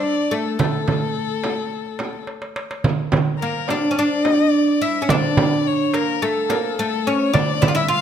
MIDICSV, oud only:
0, 0, Header, 1, 2, 480
1, 0, Start_track
1, 0, Tempo, 562324
1, 506, Time_signature, 4, 2, 24, 8
1, 6840, End_track
2, 0, Start_track
2, 0, Title_t, "Oud"
2, 0, Program_c, 0, 24
2, 0, Note_on_c, 0, 62, 96
2, 266, Note_on_c, 0, 57, 74
2, 278, Note_off_c, 0, 62, 0
2, 494, Note_off_c, 0, 57, 0
2, 504, Note_on_c, 0, 57, 67
2, 1910, Note_off_c, 0, 57, 0
2, 2921, Note_on_c, 0, 58, 70
2, 3160, Note_off_c, 0, 58, 0
2, 3161, Note_on_c, 0, 62, 77
2, 3333, Note_off_c, 0, 62, 0
2, 3336, Note_on_c, 0, 61, 62
2, 3391, Note_off_c, 0, 61, 0
2, 3403, Note_on_c, 0, 62, 87
2, 4107, Note_off_c, 0, 62, 0
2, 4110, Note_on_c, 0, 64, 82
2, 4281, Note_off_c, 0, 64, 0
2, 4284, Note_on_c, 0, 61, 68
2, 4344, Note_off_c, 0, 61, 0
2, 4354, Note_on_c, 0, 62, 90
2, 5071, Note_on_c, 0, 58, 73
2, 5091, Note_off_c, 0, 62, 0
2, 5308, Note_off_c, 0, 58, 0
2, 5311, Note_on_c, 0, 57, 79
2, 5544, Note_off_c, 0, 57, 0
2, 5547, Note_on_c, 0, 58, 83
2, 5793, Note_off_c, 0, 58, 0
2, 5798, Note_on_c, 0, 57, 88
2, 6035, Note_on_c, 0, 61, 80
2, 6038, Note_off_c, 0, 57, 0
2, 6257, Note_off_c, 0, 61, 0
2, 6261, Note_on_c, 0, 62, 89
2, 6499, Note_off_c, 0, 62, 0
2, 6503, Note_on_c, 0, 64, 85
2, 6553, Note_off_c, 0, 64, 0
2, 6556, Note_on_c, 0, 65, 73
2, 6609, Note_off_c, 0, 65, 0
2, 6613, Note_on_c, 0, 64, 96
2, 6726, Note_off_c, 0, 64, 0
2, 6730, Note_on_c, 0, 65, 93
2, 6840, Note_off_c, 0, 65, 0
2, 6840, End_track
0, 0, End_of_file